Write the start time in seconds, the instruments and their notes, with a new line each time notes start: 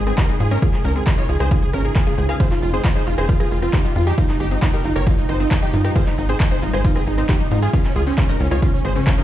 Already playing: analog synth bass G#1, ambient pad G#3 C4 D#4
0.07 synth arpeggio sound C4, supersaw synth G#4, synth pluck G#4, cross-stick, closed hi-hat
0.18 synth arpeggio sound F4, supersaw synth G4 A#4, synth pluck A#4, kick, clap, closed hi-hat
0.29 synth arpeggio sound D#4, supersaw synth G#4, synth pluck G#4, closed hi-hat
0.40 analog synth bass G#2, synth arpeggio sound F4, supersaw synth G#4, synth pluck G#4, open hi-hat
0.51 supersaw synth C#4 A#4, synth arpeggio sound G#4, synth pluck A#4, closed hi-hat
0.62 ambient pad C#3 C#4 F4 G#4, synth arpeggio sound F4, supersaw synth G#4, synth pluck G#4, kick, closed hi-hat
0.73 supersaw synth G#4, synth pluck G#4, clap, closed hi-hat
0.84 analog synth bass C#2, supersaw synth C#4 A#4, synth pluck A#4, open hi-hat
0.96 synth arpeggio sound C4, supersaw synth G#4, synth pluck G#4, closed hi-hat
1.07 synth arpeggio sound F4, supersaw synth G#4, synth pluck G#4, kick, clap, closed hi-hat
1.18 synth arpeggio sound D#4, supersaw synth F4 C#5, synth pluck C#5
1.29 analog synth bass C#2, synth arpeggio sound F4, supersaw synth G#4, synth pluck G#4, open hi-hat
1.40 analog synth bass C#2, supersaw synth G#4 C5, synth arpeggio sound G#4, synth pluck C5, cross-stick, closed hi-hat
1.51 synth arpeggio sound F4, supersaw synth G#4, synth pluck G#4, kick, closed hi-hat
1.62 synth pluck G#4, supersaw synth G#4, closed hi-hat
1.73 analog synth bass G#1, supersaw synth C#4 A#4, synth pluck A#4, cross-stick, open hi-hat
1.84 supersaw synth G#4, synth pluck G#4, synth arpeggio sound A#4, closed hi-hat
1.96 supersaw synth G#4, synth pluck G#4, synth arpeggio sound F5, kick, clap, closed hi-hat
2.07 supersaw synth F4 G#4, synth pluck G#4, synth arpeggio sound G#4, closed hi-hat
2.18 analog synth bass C#2, synth pluck G#4, supersaw synth G#4, synth arpeggio sound C5, open hi-hat
2.29 supersaw synth G#4, synth pluck G#4, synth arpeggio sound F5, cross-stick, closed hi-hat
2.40 ambient pad G#3 G4, synth arpeggio sound F4, supersaw synth G#4 C5, synth pluck C5, kick, closed hi-hat, ride
2.51 synth pluck F4, supersaw synth F4, clap, closed hi-hat
2.62 analog synth bass F1, supersaw synth F4, synth pluck F4, open hi-hat
2.73 synth arpeggio sound C4, supersaw synth G#4 C5, synth pluck C5, closed hi-hat
2.84 supersaw synth F4, synth arpeggio sound F4, synth pluck F4, kick, clap, closed hi-hat, ride
2.96 synth arpeggio sound D#4, supersaw synth G#4 C5, synth pluck C5
3.07 analog synth bass F1, supersaw synth F4, synth arpeggio sound F4, synth pluck F4, open hi-hat
3.18 analog synth bass F1, supersaw synth G#4 C5, synth arpeggio sound G#4, synth pluck C5, cross-stick, closed hi-hat
3.29 synth pluck F4, supersaw synth F4, synth arpeggio sound F4, kick, closed hi-hat, ride
3.40 supersaw synth F4 G#4, synth pluck G#4, cross-stick, closed hi-hat
3.51 analog synth bass F1, synth pluck F4, supersaw synth F4, open hi-hat
3.62 synth arpeggio sound C4, synth pluck F4, supersaw synth F4, cross-stick, closed hi-hat
3.73 supersaw synth D#4 G4, synth arpeggio sound F4, synth pluck G4, kick, clap, closed hi-hat, ride
3.84 synth arpeggio sound D#4, synth pluck F4, supersaw synth F4, closed hi-hat
3.96 analog synth bass F2, synth pluck F4, supersaw synth F4, synth arpeggio sound F4, open hi-hat
4.07 supersaw synth D#4 G4, synth pluck G4, synth arpeggio sound G#4, closed hi-hat
4.18 ambient pad G3 D#4, synth pluck D#4, supersaw synth D#4, synth arpeggio sound F4, kick, closed hi-hat, ride
4.29 synth pluck D#4, supersaw synth D#4, clap, closed hi-hat
4.40 analog synth bass G1, supersaw synth D#4 G4, synth pluck G4, open hi-hat
4.51 synth arpeggio sound C4, supersaw synth D#4, synth pluck D#4, closed hi-hat
4.62 synth pluck D#4, supersaw synth D#4, synth arpeggio sound F4, kick, clap, closed hi-hat, ride
4.73 synth arpeggio sound D#4, supersaw synth G4 A#4, synth pluck A#4
4.84 analog synth bass G1, supersaw synth D#4, synth pluck D#4, synth arpeggio sound F4, open hi-hat
4.96 analog synth bass G1, synth arpeggio sound G4, supersaw synth A#4 C#5, synth pluck C#5, cross-stick, closed hi-hat
5.07 synth pluck D#4, supersaw synth D#4, synth arpeggio sound F4, kick, closed hi-hat, ride
5.18 synth pluck D#4, supersaw synth D#4, closed hi-hat
5.29 analog synth bass G1, supersaw synth D#4 C5, synth pluck C5, cross-stick, open hi-hat
5.40 synth arpeggio sound C4, synth pluck D#4, supersaw synth D#4, closed hi-hat
5.51 synth pluck D#4, supersaw synth D#4, synth arpeggio sound F4, kick, clap, closed hi-hat, ride
5.62 synth arpeggio sound D#4, supersaw synth D#4 G4, synth pluck G4, closed hi-hat
5.73 analog synth bass G2, supersaw synth D#4, synth pluck D#4, synth arpeggio sound F4, open hi-hat
5.84 synth pluck D#4, supersaw synth D#4, synth arpeggio sound G4, cross-stick, closed hi-hat
5.96 ambient pad G#3 C4, synth arpeggio sound F4, supersaw synth G#4 C5, synth pluck C5, kick, closed hi-hat, ride
6.07 synth pluck D#4, supersaw synth D#4, clap, closed hi-hat
6.18 analog synth bass G#1, synth pluck D#4, supersaw synth D#4, open hi-hat
6.29 synth arpeggio sound C4, supersaw synth G#4 C5, synth pluck C5, closed hi-hat
6.40 synth pluck D#4, supersaw synth D#4, synth arpeggio sound F4, kick, clap, closed hi-hat, ride
6.51 synth arpeggio sound D#4, supersaw synth G#4 C5, synth pluck C5
6.62 analog synth bass G#1, synth pluck D#4, supersaw synth D#4, synth arpeggio sound F4, open hi-hat
6.73 analog synth bass G#1, synth arpeggio sound G#4, supersaw synth G#4 C5, synth pluck C5, cross-stick, closed hi-hat
6.84 synth pluck D#4, supersaw synth D#4, synth arpeggio sound F4, kick, closed hi-hat, ride
6.95 supersaw synth C4 G#4, synth pluck G#4, cross-stick, closed hi-hat
7.07 analog synth bass G#1, synth pluck D#4, supersaw synth D#4, open hi-hat
7.18 synth arpeggio sound C4, synth pluck D#4, supersaw synth D#4, cross-stick, closed hi-hat
7.29 supersaw synth D#4 G4, synth arpeggio sound F4, synth pluck G4, kick, clap, closed hi-hat, ride
7.40 synth pluck D#4, synth arpeggio sound D#4, supersaw synth D#4, closed hi-hat
7.51 analog synth bass G#2, synth pluck D#4, supersaw synth D#4, synth arpeggio sound F4, open hi-hat
7.62 supersaw synth F4 G#4, synth pluck G#4, synth arpeggio sound G#4, closed hi-hat
7.73 ambient pad C#3 C#4 F4 G#4, synth pluck C#4, supersaw synth C#4, synth arpeggio sound F4, kick, closed hi-hat, ride
7.85 supersaw synth C#4, synth pluck C#4, clap, closed hi-hat
7.96 analog synth bass C#2, supersaw synth F4 G#4, synth pluck G#4, open hi-hat
8.07 synth arpeggio sound C4, supersaw synth C#4, synth pluck C#4, closed hi-hat
8.18 synth pluck C#4, supersaw synth C#4, synth arpeggio sound F4, kick, clap, closed hi-hat, ride
8.29 supersaw synth C#4 A#4, synth arpeggio sound D#4, synth pluck A#4, closed hi-hat
8.40 analog synth bass C#2, synth pluck C#4, supersaw synth C#4, synth arpeggio sound F4, open hi-hat
8.51 analog synth bass C#2, supersaw synth F4 C#5, synth arpeggio sound G#4, synth pluck C#5, cross-stick, closed hi-hat
8.62 synth pluck C#4, supersaw synth C#4, synth arpeggio sound F4, kick, closed hi-hat, ride
8.73 synth pluck C#4, supersaw synth C#4, closed hi-hat
8.84 analog synth bass G#1, supersaw synth G#4 C5, synth pluck C5, cross-stick, open hi-hat
8.96 synth arpeggio sound C4, synth pluck C#4, supersaw synth C#4, closed hi-hat
9.07 supersaw synth C#4, synth pluck C#4, synth arpeggio sound F4, kick, clap, closed hi-hat, ride
9.18 supersaw synth C#4 A#4, synth arpeggio sound D#4, synth pluck A#4, closed hi-hat